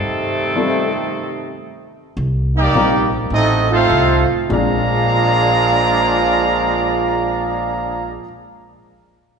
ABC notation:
X:1
M:4/4
L:1/8
Q:"Swing" 1/4=97
K:Bbmix
V:1 name="Trumpet section"
z8 | z [B,EGd]2 z [C_G=Ae] [EAcf]2 z | [Adfb]8- | [Adfb]8 |]
V:2 name="Saxophone section"
[G,CE=A]6 z2 | z8 | z8 | z8 |]
V:3 name="Grand piano"
z2 [G,CF=A] z4 z | z2 [G,CFB] z4 z | [B,,F,A,CD]8- | [B,,F,A,CD]8 |]
V:4 name="Trombone section"
[C,E,=A,]6 z2 | z [G,B,E]2 z [=A,CE] [A,CF]2 z | [B,,F,A,D]8- | [B,,F,A,D]8 |]
V:5 name="Upright bass" clef=bass
z8 | C,,2 B,,,2 =A,,,2 C,, z | B,,,8- | B,,,8 |]